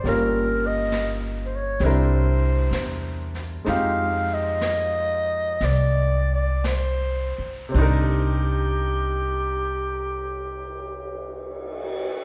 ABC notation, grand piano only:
X:1
M:4/4
L:1/8
Q:"Swing" 1/4=60
K:Cm
V:1 name="Grand piano"
[G,B,_DFB]4 [G,C=D=EB]4 | [A,CEFG]8 | [C,CDEB]8 |]